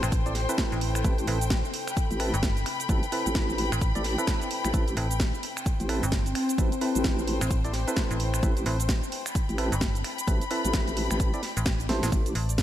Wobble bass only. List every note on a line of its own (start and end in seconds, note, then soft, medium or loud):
1.04 1.26 A1 medium
2.11 2.31 A1 medium
2.89 3.01 A1 loud
3.26 3.70 A1 medium
3.95 4.16 A1 loud
4.65 4.72 A1 loud
4.74 4.95 A1 loud
5.80 6.01 A1 medium
6.58 6.70 A1 loud
6.95 7.39 A1 loud
8.43 8.64 A1 loud
9.49 9.70 A1 loud
10.28 10.39 A1 loud
10.65 11.08 A1 medium
11.11 11.32 A1 loud
11.89 12.01 A1 loud
12.12 12.34 A1 loud